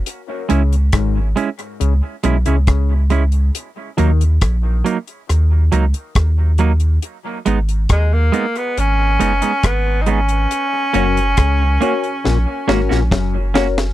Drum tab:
HH |x-xxx-xxx-xxx-xx|x-xxx-xxx-xxx-xx|x-xxx-xxx-xxx-xx|x-xxx-xx--------|
SD |----r-------r---|----r---r---r---|----r-------r---|----r---o-ooo-oo|
BD |----o-------o---|----o-------o---|----o-------o---|----o-------o---|